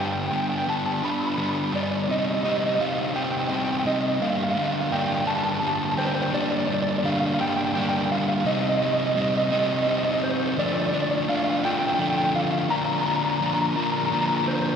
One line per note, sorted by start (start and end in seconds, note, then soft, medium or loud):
0.00 0.30 G2 medium
0.00 0.31 D3 medium
0.00 0.32 G3 medium
0.00 0.31 B3 medium
0.00 0.31 D4 medium
0.07 0.12 G5 medium
0.13 0.20 G5 medium
0.22 0.28 G5 medium
0.28 0.66 G2 medium
0.28 0.66 D3 medium
0.28 0.67 G3 medium
0.28 0.35 G5 medium
0.32 0.67 B3 medium
0.32 0.67 D4 medium
0.32 0.42 G5 medium
0.43 0.49 G5 medium
0.49 0.57 G5 medium
0.58 0.65 G5 medium
0.67 1.01 G2 medium
0.67 1.02 D3 medium
0.67 1.03 G3 medium
0.67 1.02 B3 medium
0.67 1.03 D4 medium
0.67 0.77 A5 medium
0.77 0.85 A5 medium
0.86 0.94 A5 medium
0.94 1.02 A5 medium
1.03 1.36 G2 medium
1.03 1.36 D3 medium
1.03 1.37 G3 medium
1.03 1.37 B3 medium
1.03 1.37 D4 medium
1.03 1.11 B5 medium
1.12 1.19 B5 medium
1.20 1.27 B5 medium
1.27 1.34 B5 medium
1.34 1.72 G2 medium
1.34 1.72 D3 medium
1.34 1.73 G3 medium
1.34 1.73 B3 medium
1.34 1.40 B5 medium
1.39 1.73 D4 medium
1.39 1.48 B5 medium
1.49 1.56 B5 medium
1.56 1.63 B5 medium
1.63 1.70 B5 medium
1.73 2.07 G2 medium
1.73 2.07 D3 medium
1.73 2.08 G3 medium
1.73 2.07 B3 medium
1.73 2.07 D4 medium
1.73 1.82 D5 medium
1.83 1.90 D5 medium
1.91 1.96 D5 medium
1.97 2.04 D5 medium
2.04 2.11 D5 medium
2.08 2.43 C3 medium
2.08 2.44 G3 loud
2.08 2.44 C4 loud
2.08 2.44 D#4 loud
2.08 2.19 D#5 medium
2.19 2.27 D#5 medium
2.27 2.34 D#5 medium
2.34 2.42 D#5 medium
2.43 2.78 C3 medium
2.43 2.79 G3 medium
2.43 2.79 C4 medium
2.43 2.79 D#4 medium
2.43 2.51 D#5 medium
2.52 2.59 D#5 medium
2.59 2.66 D#5 medium
2.66 2.74 D#5 medium
2.75 2.83 D#5 medium
2.79 3.13 C3 medium
2.79 3.15 G3 medium
2.79 3.14 C4 medium
2.79 3.14 D#4 loud
2.79 2.87 F5 medium
2.88 2.95 F5 medium
2.96 3.03 F5 medium
3.04 3.09 F5 medium
3.09 3.15 F5 medium
3.15 3.49 C3 medium
3.15 3.50 G3 medium
3.15 3.49 C4 loud
3.15 3.50 D#4 loud
3.15 3.23 G5 medium
3.24 3.31 G5 medium
3.32 3.39 G5 medium
3.39 3.47 G5 medium
3.47 3.84 C3 medium
3.47 3.85 G3 medium
3.47 3.85 C4 medium
3.47 3.85 D#4 medium
3.47 3.55 G5 medium
3.56 3.64 G5 medium
3.64 3.72 G5 medium
3.72 3.79 G5 medium
3.79 3.88 G5 medium
3.85 4.19 C3 medium
3.85 4.21 G3 medium
3.85 4.19 C4 medium
3.85 4.19 D#4 medium
3.85 3.94 D#5 medium
4.01 4.08 D#5 medium
4.08 4.15 D#5 medium
4.16 4.23 D#5 medium
4.21 4.55 G2 medium
4.21 4.55 D3 loud
4.21 4.56 G3 loud
4.21 4.56 A#3 loud
4.21 4.56 D4 loud
4.21 4.29 F5 medium
4.30 4.37 F5 medium
4.37 4.43 F5 medium
4.43 4.50 F5 medium
4.51 4.58 F5 medium
4.56 4.90 G2 medium
4.56 4.91 D3 medium
4.56 4.91 G3 medium
4.56 4.92 A#3 medium
4.56 4.92 D4 medium
4.56 4.65 F5 medium
4.66 4.73 F5 medium
4.74 4.80 F5 medium
4.81 4.88 F5 medium
4.91 5.25 G2 medium
4.91 5.25 D3 medium
4.91 5.25 G3 medium
4.91 5.26 A#3 medium
4.91 5.26 D4 loud
4.91 4.99 G5 medium
4.99 5.06 G5 medium
5.07 5.14 G5 medium
5.14 5.20 G5 medium
5.21 5.27 G5 medium
5.26 5.61 G2 medium
5.26 5.61 D3 medium
5.26 5.61 G3 medium
5.26 5.62 A#3 loud
5.26 5.62 D4 loud
5.26 5.35 A5 loud
5.36 5.43 A5 medium
5.43 5.51 A5 medium
5.51 5.59 A5 medium
5.60 5.96 G2 medium
5.60 5.97 D3 medium
5.60 5.97 G3 medium
5.60 5.97 A#3 medium
5.60 5.97 D4 medium
5.60 5.67 A5 medium
5.68 5.75 A5 medium
5.75 5.84 A5 medium
5.85 5.92 A5 medium
5.92 5.97 A5 medium
5.97 6.31 G2 medium
5.97 6.31 D3 medium
5.97 6.31 G3 medium
5.97 6.32 A#3 medium
5.97 6.32 D4 loud
5.97 6.06 C5 medium
5.97 6.06 G5 medium
6.07 6.14 C5 medium
6.07 6.14 G5 medium
6.14 6.23 C5 medium
6.14 6.21 G5 medium
6.22 6.32 C5 medium
6.22 6.30 G5 medium
6.32 7.03 G2 medium
6.32 7.02 D3 loud
6.32 6.69 G3 medium
6.32 6.68 A#3 loud
6.32 6.66 D4 loud
6.32 6.42 D5 medium
6.42 6.50 D5 medium
6.51 6.58 D5 medium
6.58 6.66 D5 medium
6.67 7.04 G3 medium
6.67 7.04 A#3 medium
6.67 7.04 D4 medium
6.67 6.74 D5 medium
6.74 6.82 D5 medium
6.82 6.90 D5 medium
6.90 6.98 D5 medium
6.98 7.06 D5 medium
7.03 7.39 D3 medium
7.03 7.38 G3 medium
7.03 7.38 A#3 medium
7.03 7.37 D4 medium
7.03 7.12 F5 medium
7.12 7.19 F5 medium
7.20 7.27 F5 medium
7.27 7.34 F5 medium
7.34 7.41 F5 medium
7.39 8.11 G2 medium
7.39 7.73 D3 medium
7.39 7.73 G3 medium
7.39 7.74 A#3 medium
7.39 7.75 D4 loud
7.39 7.48 G5 loud
7.49 7.56 G5 medium
7.56 7.64 G5 medium
7.65 7.73 G5 medium
7.74 8.43 D3 medium
7.74 8.43 G3 medium
7.74 8.44 A#3 medium
7.74 8.44 D4 medium
7.74 7.80 G5 medium
7.81 7.88 G5 medium
7.89 7.97 G5 medium
7.98 8.05 G5 medium
8.06 8.11 G5 medium
8.12 8.18 F5 loud
8.19 8.27 F5 medium
8.28 8.36 F5 medium
8.36 8.44 F5 medium
8.44 9.15 C3 medium
8.44 8.81 G3 loud
8.44 8.81 C4 medium
8.44 8.79 D#4 loud
8.44 8.53 D#5 medium
8.53 8.60 D#5 medium
8.61 8.68 D#5 medium
8.69 8.77 D#5 medium
8.77 9.17 C4 medium
8.77 9.17 D#4 medium
8.77 8.84 D#5 medium
8.82 9.15 G3 medium
8.82 8.92 D#5 medium
8.93 8.99 D#5 medium
8.99 9.06 D#5 medium
9.06 9.14 D#5 medium
9.15 9.52 C3 medium
9.15 9.51 G3 medium
9.15 9.51 C4 medium
9.15 9.50 D#4 medium
9.15 9.21 D#5 medium
9.22 9.29 D#5 medium
9.30 9.37 D#5 medium
9.37 9.45 D#5 medium
9.45 9.52 D#5 medium
9.51 9.85 C3 medium
9.51 9.86 G3 medium
9.51 9.86 C4 loud
9.51 9.87 D#4 loud
9.51 9.59 D#5 medium
9.60 9.67 D#5 medium
9.69 9.74 D#5 medium
9.75 9.82 D#5 medium
9.82 10.55 C3 medium
9.82 9.90 D#5 medium
9.87 10.56 G3 medium
9.87 10.56 C4 medium
9.87 10.56 D#4 medium
9.87 9.98 D#5 medium
9.98 10.04 D#5 medium
10.05 10.12 D#5 medium
10.13 10.21 D#5 medium
10.21 10.31 C5 medium
10.21 10.23 D#5 medium
10.31 10.39 C5 medium
10.40 10.48 C5 medium
10.49 10.57 C5 medium
10.57 11.28 D3 loud
10.57 10.94 F3 loud
10.57 10.93 A3 loud
10.57 10.93 D4 loud
10.57 10.66 D5 loud
10.66 10.73 D5 medium
10.74 10.81 D5 medium
10.82 10.88 D5 medium
10.89 10.95 D5 loud
10.93 11.29 F3 medium
10.93 11.29 A3 medium
10.93 11.30 D4 medium
10.93 11.02 D5 medium
11.02 11.10 D5 medium
11.11 11.17 D5 medium
11.17 11.25 D5 medium
11.29 11.65 D3 medium
11.29 11.64 F3 medium
11.29 11.63 A3 medium
11.29 11.63 D4 medium
11.29 11.36 F5 loud
11.37 11.44 F5 medium
11.44 11.50 F5 medium
11.50 11.58 F5 medium
11.59 11.64 F5 medium
11.63 11.98 D3 medium
11.63 11.98 F3 medium
11.63 11.99 A3 medium
11.63 12.00 D4 loud
11.63 11.72 G5 loud
11.73 11.79 G5 medium
11.79 11.86 G5 loud
11.87 11.94 G5 medium
11.94 12.01 G5 medium
11.99 12.68 D3 medium
11.99 12.68 F3 medium
11.99 12.69 A3 medium
11.99 12.71 D4 medium
11.99 12.09 G5 medium
12.10 12.17 G5 medium
12.17 12.24 G5 medium
12.24 12.31 G5 medium
12.36 12.44 F5 loud
12.44 12.52 F5 medium
12.52 12.60 F5 medium
12.60 12.69 F5 medium
12.70 13.39 D3 loud
12.70 13.05 F3 loud
12.70 13.05 A#3 loud
12.70 13.04 D4 loud
12.70 12.77 A#5 loud
12.78 12.85 A#5 medium
12.85 12.93 A#5 loud
12.94 13.00 A#5 medium
13.00 13.07 A#5 loud
13.05 13.40 F3 medium
13.05 13.41 A#3 medium
13.05 13.42 D4 medium
13.05 13.15 A#5 medium
13.16 13.24 A#5 loud
13.24 13.30 A#5 medium
13.31 13.37 A#5 loud
13.38 13.76 D3 medium
13.38 13.76 F3 medium
13.38 13.45 A#5 medium
13.42 13.76 A#3 medium
13.42 13.75 D4 medium
13.46 13.53 A#5 loud
13.54 13.61 A#5 medium
13.62 13.68 A#5 loud
13.68 13.76 A#5 medium
13.76 14.10 D3 medium
13.76 14.11 F3 medium
13.76 14.12 A#3 loud
13.76 14.12 D4 medium
13.76 13.83 A#5 loud
13.83 13.91 A#5 medium
13.92 13.98 A#5 loud
13.98 14.05 A#5 medium
14.06 14.13 A#5 loud
14.11 14.76 D3 medium
14.11 14.76 F3 medium
14.11 14.76 A#3 medium
14.11 14.76 D4 medium
14.11 14.21 A#5 medium
14.21 14.27 A#5 medium
14.37 14.44 A#5 loud
14.48 14.54 C5 medium
14.55 14.61 C5 medium
14.62 14.69 C5 medium
14.70 14.75 C5 medium